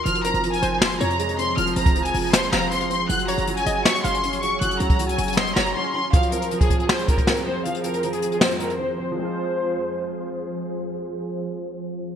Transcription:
<<
  \new Staff \with { instrumentName = "Violin section" } { \time 4/4 \key f \phrygian \tempo 4 = 158 f'''8 bes''8. aes''8 aes''16 c'''8 bes''4 c'''8 | f'''8 bes''8. aes''8 aes''16 c'''8 bes''8 c'''8 c'''8 | ges'''8 bes''8. aes''8 aes''16 des'''8 c'''4 des'''8 | ges'''8 bes''8. aes''8 aes''16 c'''8 bes''8 c'''8 c'''8 |
f''8 bes'8. aes'8 aes'16 c''8 bes'4 c''8 | f''8 bes'8. aes'8 aes'16 c''8 bes'8 c''8 c''8 | c''2. r4 | r1 | }
  \new Staff \with { instrumentName = "Synth pluck" } { \time 4/4 \key f \phrygian r8 bes'4 c''4 des''4. | r2 c''8 f''8 r4 | r8 des''4 ees''4 f''4. | r2 ees''8 des''4. |
r1 | r1 | r1 | r1 | }
  \new Staff \with { instrumentName = "Ambient pad" } { \time 4/4 \key f \phrygian << { <f f'>1~ | <f f'>1 | <ges ges' des''>1~ | <ges ges' des''>1 |
<f, f c''>1~ | <f, f c''>1 | <f f' aes' c''>1~ | <f f' aes' c''>1 | } \\ { aes'1~ | aes'1~ | aes'1~ | aes'1 |
aes'1~ | aes'1 | r1 | r1 | } >> }
  \new Staff \with { instrumentName = "Grand piano" } { \time 4/4 \key f \phrygian f8 c'8 f4. c8 aes8 c'8 | f8 c'8 f4. c'8 c'8 c'8 | ges8 des'8 ges4. des'8 des'8 des'8 | ges8 des'8 ges4. des'8 des'8 des'8 |
f8 c'8 f4. c'8 c'8 c'8 | f8 c'8 f4. c'8 c'8 c'8 | <f aes c' f'>1~ | <f aes c' f'>1 | }
  \new Staff \with { instrumentName = "808-style bass" } { \clef bass \time 4/4 \key f \phrygian f,,8. f,,8. f,,4 f,4. | f,,8 f,,4 f,,4 f,,4. | ges,,8. ges,,8. ges,,8 r8 ges,,4. | ges,,8 des,4 ges,,4 ges,,8 r4 |
r1 | r1 | r1 | r1 | }
  \new DrumStaff \with { instrumentName = "Drums" } \drummode { \time 4/4 hh16 hh16 hh16 hh16 hh16 hh16 hh8 sn16 hh16 hh16 hh16 hh16 hh16 hh8 | hh16 hh16 hh16 <hh bd>16 hh16 hh16 hho8 <hhp sn>16 hh16 sn16 hh16 hh16 hh16 hh8 | hh16 hh16 hh16 hh16 hh16 hh16 hh8 sn16 hh16 hh16 hh16 hh16 hh16 hh8 | hh16 hh16 hh16 <hh bd>16 hh16 hh16 <hh hho>32 hh32 hh32 hh32 sn16 hh16 sn16 hh16 r4 |
<hh bd>16 hh16 hh16 hh16 hh16 <hh bd>16 <hh bd>16 hh16 sn16 hh16 <hh bd>16 <hh bd>16 sn16 hh8. | hh16 hh16 hh16 hh16 hh16 hh16 hh16 hh16 sn16 hh16 hh16 hh16 r4 | r4 r4 r4 r4 | r4 r4 r4 r4 | }
>>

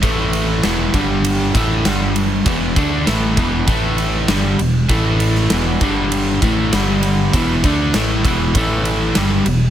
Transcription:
<<
  \new Staff \with { instrumentName = "Overdriven electric guitar" } { \clef bass \time 4/4 \key a \major \tempo 4 = 99 <a, e a>4 <e, b, e>8 <g, d g>4 <a, e a>8 <g, d g>4 | <e, b, e>8 <d a d'>8 <a, e a>8 <e, b, e>8 <a, e a>4 <g, d g>8 <e, b,>8 | <a, e a>4 <e, b, e>8 <g, d g>4 <a, e a>8 <g, d g>4 | <e, b, e>8 <d a d'>8 <a, e a>8 <e, b, e>8 <a, e a>4 <g, d g>8 <e, b,>8 | }
  \new Staff \with { instrumentName = "Fingered electric bass" } { \clef bass \time 4/4 \key a \major a,,4 e,,8 g,,4 a,,8 g,,4 | e,,8 d,8 a,,8 e,,8 a,,4 g,,8 e,,8 | a,,4 e,,8 g,,4 a,,8 g,,4 | e,,8 d,8 a,,8 e,,8 a,,4 g,,8 e,,8 | }
  \new DrumStaff \with { instrumentName = "Drums" } \drummode { \time 4/4 <bd cymr>8 cymr8 <cymr sn>8 <bd cymr>8 cymr8 <bd cymr>8 <cymr sn>8 cymr8 | <bd cymr>8 <bd cymr>8 <cymr sn>8 <bd cymr>8 <bd cymr>8 cymr8 <cymr sn>8 cymr8 | <bd cymr>8 cymr16 sn16 <cymr sn>8 <bd cymr>8 cymr8 <bd cymr>8 <cymr sn>8 cymr8 | <bd cymr>8 <bd cymr>8 <cymr sn>8 <bd cymr>8 <bd cymr>8 cymr8 <cymr sn>8 cymr8 | }
>>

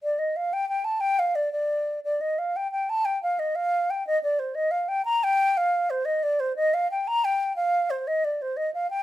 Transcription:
\new Staff \with { instrumentName = "Flute" } { \time 6/8 \key g \minor \tempo 4. = 119 d''8 ees''8 f''8 g''8 g''8 a''8 | g''8 f''8 d''8 d''4. | d''8 ees''8 f''8 g''8 g''8 a''8 | g''8 f''8 ees''8 f''4 g''8 |
ees''8 d''8 c''8 ees''8 f''8 g''8 | bes''8 g''4 f''4 c''8 | ees''8 d''8 c''8 ees''8 f''8 g''8 | bes''8 g''4 f''4 c''8 |
ees''8 d''8 c''8 ees''8 f''8 g''8 | }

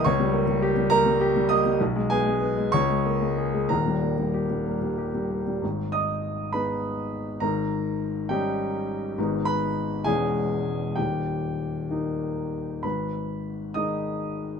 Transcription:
<<
  \new Staff \with { instrumentName = "Grand piano" } { \time 6/8 \key gis \minor \tempo 4. = 66 <cis'' cis'''>4. <ais' ais''>4 <dis'' dis'''>8 | r8 <gis' gis''>4 <cis'' cis'''>4. | <ais' ais''>4. r4. | r8 <dis'' dis'''>4 <b' b''>4. |
<ais' ais''>4. <g' g''>4. | r8 <b' b''>4 <gis' gis''>4. | <g' g''>4. r4. | <b' b''>4. <dis'' dis'''>4. | }
  \new Staff \with { instrumentName = "Grand piano" } { \clef bass \time 6/8 \key gis \minor cis,16 g16 ais16 g16 g'16 g16 ais16 g16 g'16 g16 ais16 g16 | b,,16 gis16 b16 gis16 b16 gis16 cis,16 gis16 ais16 gis16 gis'16 gis16 | <dis,, dis,>16 g16 ais16 g16 g'16 g16 ais16 g16 g'16 g16 ais16 g16 | <gis,, gis,>4. <gis b dis'>4. |
<gis,, gis,>4. <g cis' dis'>4. | <gis,, gis, gis b dis'>4. <e,, e, gis cis'>4. | <dis,, dis,>4. <dis ais dis'>4. | <gis,, gis,>4. <dis gis dis'>4. | }
>>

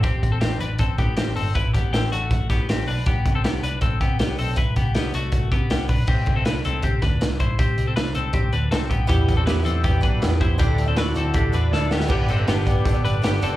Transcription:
<<
  \new Staff \with { instrumentName = "Woodwind section" } { \time 4/4 \key c \lydian \tempo 4 = 159 r1 | r1 | r1 | r1 |
r1 | r1 | r1 | r1 |
<b' d'' g'' d'''>1 | }
  \new Staff \with { instrumentName = "Clean electric guitar" } { \time 4/4 \key c \lydian <c' g'>8. <c' a'>16 <c' g'>8 <d' b'>8 <c' a'>8 <b g'>8 <c' g'>8 <c' a'>8 | <e' b'>8 <b g'>8 <c' g'>8 <a fis'>4 <b g'>8 <c' g'>8 <d' b'>8 | <b g'>8. <c' a'>16 <b g'>8 <d' b'>8 <c' a'>8 <b g'>8 <b g'>8 <c' a'>8 | <e' b'>8 <b g'>8 <b g'>8 <a fis'>4 <b g'>8 <b g'>8 <d' b'>8 |
<c' g'>8. <c' a'>16 <d' b'>8 <c' a'>8 <c' g'>8 <d' b'>4 <e' c''>8 | <c' g'>8. <c' a'>16 <d' b'>8 <c' a'>8 <c' g'>8 <d' b'>8 <c' a'>8 <b g'>8 | <b g'>8. <c' a'>16 <e' b'>8 <c' a'>8 <b g'>8 <d' b'>4 <e' c''>8 | <d' g'>8. <c' a'>16 <d' b'>8 <c' a'>8 <d' g'>8 <d' b'>8 <d' a'>8 <b g'>8 |
<b g'>8 <c' a'>8 <b g'>4. <d' b'>8 <b g'>8 <c' a'>8 | }
  \new Staff \with { instrumentName = "Synth keys" } { \time 4/4 \key c \lydian r1 | r1 | r1 | r1 |
r1 | r1 | <b e' g'>8 r8 <b e' g'>8 r8 <b e' g'>8 r8 <b e' g'>8 r8 | <d' e' a'>8 r8 <d' e' fis'>8 r8 <d' e' a'>8 r8 <d' e' a'>8 r8 |
<d' g' b'>8 r8 <d' g' b'>8 r8 <d' g' a'>8 r8 <d' g' b'>8 r8 | }
  \new Staff \with { instrumentName = "Twelve-string acoustic guitar" } { \time 4/4 \key c \lydian r1 | r1 | r1 | r1 |
r1 | r1 | <e g b e'>8. <g b e'>8. <e g b e'>4 <e g b e'>8. <g b e'>8. | <d a d' e'>8. <a d' e'>8. <d a d' e'>4 <d a d' e'>8. <a d' e'>8. |
<g, d g b d'>8. <g b d'>8. <d g b d'>8. <g b d'>8. <d g b d'>8 <d g b d'>8 | }
  \new Staff \with { instrumentName = "Picked electric bass" } { \clef bass \time 4/4 \key c \lydian a,,8 a,,8 a,,8 a,,8 a,,8 a,8 a,,8 g,,8 | a,,8 a,,8 a,,8 a,,8 a,,8 a,8 a,,8 b,,8 | c,8 c,8 c,8 c,8 c,8 c8 c,8 b,,8 | c,8 c,8 c,8 c,8 c,8 c8 c,8 b,,8 |
c,8 c,8 c,8 c,8 c,8 d,8 c,8 c,8 | c,8 c,8 c,8 c,8 c,8 d,8 c,8 c,8 | e,8 e,8 e,8 e,8 e,8 fis,8 e,8 e,8 | d,8 d,8 d,8 d,8 d,8 e,8 d,8 d,8 |
g,,8 g,,8 g,,8 g,,8 g,,8 g,,8 g,,8 fis,,8 | }
  \new DrumStaff \with { instrumentName = "Drums" } \drummode { \time 4/4 <hh bd>8 <hh bd>8 <hh sn>8 hh8 <hh bd>8 <hh bd>8 <hh sn>8 hho8 | <hh bd>8 <hh bd>8 <hh sn>8 hh8 <hh bd>8 <hh bd sn>8 <hh sn>8 hho8 | <hh bd>8 <hh bd>8 <hh sn>8 hh8 <hh bd>8 <hh bd>8 <hh sn>8 hho8 | <hh bd>8 <hh bd>8 <hh sn>8 hh8 <hh bd>8 <hh bd>8 <hh sn>8 <hho bd>8 |
<cymc bd>8 <hh bd>8 <hh sn>8 hh8 <hh bd>8 <hh bd sn>8 <hh sn>8 <hh bd>8 | <hh bd>8 hh8 <hh sn>8 hh8 <hh bd>8 hh8 <hh sn>8 <hh bd>8 | <hh bd>8 <hh bd>8 <hh sn>8 hh8 <hh bd>8 <hh bd>8 <hh sn>8 <hh bd>8 | <hh bd>8 hh8 <hh sn>8 hh8 <hh bd>8 hh8 sn8 sn16 sn16 |
<cymc bd>8 hh8 <hh sn>8 <hh bd>8 <hh bd>8 hh8 <hh sn>8 hh8 | }
>>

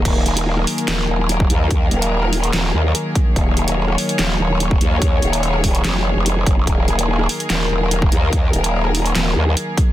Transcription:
<<
  \new Staff \with { instrumentName = "String section" } { \time 4/4 \key ees \minor \tempo 4 = 145 << { bes'1~ | bes'1 | des''1~ | des''1 |
bes'1~ | bes'1 | } \\ { <ees ges bes aes'>1~ | <ees ges bes aes'>1~ | <ees ges bes aes'>1~ | <ees ges bes aes'>1~ |
<ees ges bes aes'>1~ | <ees ges bes aes'>1 | } >> }
  \new Staff \with { instrumentName = "Wobble bass" } { \clef bass \time 4/4 \key ees \minor ees,,4. r8 ees,,8 ees,,4 ees,8~ | ees,8 ees,,4. ees,,8 ees,8 r4 | ees,,4. r8 ees,,8 ees,,4 ees,8~ | ees,8 ees,,4. f,,8. f,,8. ges,,8 |
ees,,4. r8 ees,,8 ees,,4 ees,8~ | ees,8 ees,,4. ees,,8 ees,8 r4 | }
  \new DrumStaff \with { instrumentName = "Drums" } \drummode { \time 4/4 <cymc hh bd>8 hh16 hh16 r16 ss16 hho16 hh16 <hc hh sn>4 hh16 bd16 hh8 | <hh bd>8 hh16 hh16 r16 ss16 hho16 hh16 <hc hh sn>4 hh8 <hh bd>8 | <hh bd>8 hh16 hh16 r16 ss16 hho16 hh16 <hc hh sn>4 hh16 bd16 hh8 | <hh bd>8 hh16 hh16 hh16 ss16 <hho bd>16 hh16 <hc hh sn>4 hh8 <hh bd>8 |
<hh bd>8 hh16 hh16 r16 ss16 hho16 hh16 <hc hh sn>4 hh16 bd16 hh8 | <hh bd>8 hh16 hh16 r16 ss16 hho16 hh16 <hc hh sn>4 hh8 <hh bd>8 | }
>>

